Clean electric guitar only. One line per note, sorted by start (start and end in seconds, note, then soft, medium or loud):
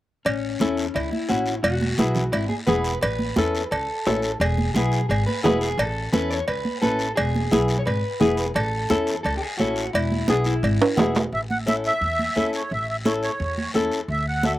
0.25 0.97 C#4 medium
0.95 1.10 E4 medium
1.11 1.62 E4 medium
1.63 2.34 F#4 medium
2.32 2.49 E4 medium
2.49 2.54 G#4 medium
2.67 3.01 B4 medium
3.02 3.71 B4 medium
3.71 4.41 A4 medium
4.41 4.73 G#4 medium
4.74 5.08 G#4 medium
5.09 5.26 G#4 medium
5.26 5.42 B4 loud
5.44 5.61 B4 medium
5.62 5.79 G#4 medium
5.79 6.12 A4 loud
6.12 6.30 B4 loud
6.30 6.48 C#5 loud
6.48 6.81 B4 loud
6.82 7.14 A4 loud
7.16 7.78 G#4 medium
7.79 7.86 C#5 medium
7.86 8.55 B4 medium
8.55 9.22 A4 medium
9.23 9.37 A4 medium
9.37 9.41 G4 medium
9.41 9.57 G#4 medium
9.58 9.93 F#4 medium
9.93 10.29 E4 medium
10.28 10.33 D4 medium
10.46 11.11 E4 medium